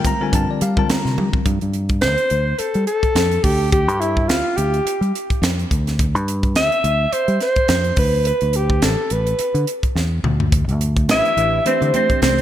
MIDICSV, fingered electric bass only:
0, 0, Header, 1, 3, 480
1, 0, Start_track
1, 0, Tempo, 566572
1, 1237, Time_signature, 4, 2, 24, 8
1, 10520, End_track
2, 0, Start_track
2, 0, Title_t, "Fingered electric bass"
2, 0, Program_c, 0, 33
2, 276, Note_on_c, 0, 43, 86
2, 378, Note_off_c, 0, 43, 0
2, 523, Note_on_c, 0, 55, 90
2, 702, Note_off_c, 0, 55, 0
2, 891, Note_on_c, 0, 48, 78
2, 971, Note_off_c, 0, 48, 0
2, 998, Note_on_c, 0, 55, 90
2, 1099, Note_off_c, 0, 55, 0
2, 1233, Note_on_c, 0, 43, 82
2, 1336, Note_off_c, 0, 43, 0
2, 1374, Note_on_c, 0, 43, 66
2, 1722, Note_on_c, 0, 38, 72
2, 1734, Note_off_c, 0, 43, 0
2, 1821, Note_off_c, 0, 38, 0
2, 1958, Note_on_c, 0, 38, 77
2, 2139, Note_off_c, 0, 38, 0
2, 2331, Note_on_c, 0, 55, 70
2, 2411, Note_off_c, 0, 55, 0
2, 2670, Note_on_c, 0, 41, 84
2, 2854, Note_off_c, 0, 41, 0
2, 2912, Note_on_c, 0, 38, 89
2, 3287, Note_off_c, 0, 38, 0
2, 3287, Note_on_c, 0, 43, 70
2, 3638, Note_off_c, 0, 43, 0
2, 3638, Note_on_c, 0, 38, 78
2, 3739, Note_off_c, 0, 38, 0
2, 3877, Note_on_c, 0, 38, 76
2, 4059, Note_off_c, 0, 38, 0
2, 4245, Note_on_c, 0, 55, 73
2, 4328, Note_off_c, 0, 55, 0
2, 4590, Note_on_c, 0, 41, 87
2, 4775, Note_off_c, 0, 41, 0
2, 4837, Note_on_c, 0, 38, 87
2, 5209, Note_off_c, 0, 38, 0
2, 5209, Note_on_c, 0, 43, 67
2, 5557, Note_off_c, 0, 43, 0
2, 5557, Note_on_c, 0, 38, 80
2, 5660, Note_off_c, 0, 38, 0
2, 5794, Note_on_c, 0, 38, 80
2, 5978, Note_off_c, 0, 38, 0
2, 6167, Note_on_c, 0, 55, 71
2, 6250, Note_off_c, 0, 55, 0
2, 6515, Note_on_c, 0, 41, 87
2, 6698, Note_off_c, 0, 41, 0
2, 6752, Note_on_c, 0, 38, 85
2, 7038, Note_off_c, 0, 38, 0
2, 7132, Note_on_c, 0, 38, 74
2, 7476, Note_on_c, 0, 33, 76
2, 7489, Note_off_c, 0, 38, 0
2, 7579, Note_off_c, 0, 33, 0
2, 7719, Note_on_c, 0, 33, 69
2, 7901, Note_off_c, 0, 33, 0
2, 8086, Note_on_c, 0, 50, 74
2, 8169, Note_off_c, 0, 50, 0
2, 8433, Note_on_c, 0, 40, 70
2, 8651, Note_off_c, 0, 40, 0
2, 8672, Note_on_c, 0, 38, 76
2, 9044, Note_off_c, 0, 38, 0
2, 9047, Note_on_c, 0, 38, 67
2, 9392, Note_off_c, 0, 38, 0
2, 9392, Note_on_c, 0, 33, 73
2, 9495, Note_off_c, 0, 33, 0
2, 9631, Note_on_c, 0, 33, 73
2, 9815, Note_off_c, 0, 33, 0
2, 10010, Note_on_c, 0, 50, 74
2, 10090, Note_off_c, 0, 50, 0
2, 10355, Note_on_c, 0, 36, 91
2, 10520, Note_off_c, 0, 36, 0
2, 10520, End_track
3, 0, Start_track
3, 0, Title_t, "Muted fingered electric bass strokes"
3, 1130, Note_on_c, 9, 29, 41
3, 1215, Note_off_c, 9, 29, 0
3, 2199, Note_on_c, 9, 29, 28
3, 2283, Note_off_c, 9, 29, 0
3, 2565, Note_on_c, 9, 29, 32
3, 2650, Note_off_c, 9, 29, 0
3, 4493, Note_on_c, 9, 29, 32
3, 4577, Note_off_c, 9, 29, 0
3, 6037, Note_on_c, 9, 29, 31
3, 6121, Note_off_c, 9, 29, 0
3, 6410, Note_on_c, 9, 29, 31
3, 6495, Note_off_c, 9, 29, 0
3, 7958, Note_on_c, 9, 29, 30
3, 8043, Note_off_c, 9, 29, 0
3, 8329, Note_on_c, 9, 29, 30
3, 8414, Note_off_c, 9, 29, 0
3, 9873, Note_on_c, 9, 29, 33
3, 9958, Note_off_c, 9, 29, 0
3, 10248, Note_on_c, 9, 29, 29
3, 10332, Note_off_c, 9, 29, 0
3, 10520, End_track
0, 0, End_of_file